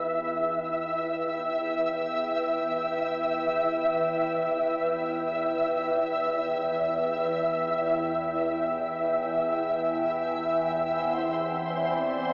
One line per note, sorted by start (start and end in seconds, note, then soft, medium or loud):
0.00 12.33 E2 medium
0.00 12.33 E3 medium
0.00 12.33 E4 medium
0.00 10.82 B4 medium
0.00 10.85 E5 medium
0.00 12.33 E5 medium
0.00 12.33 G5 medium
10.84 12.33 E3 medium
10.84 12.33 C5 medium
11.60 12.33 D5 medium
11.77 12.33 C4 medium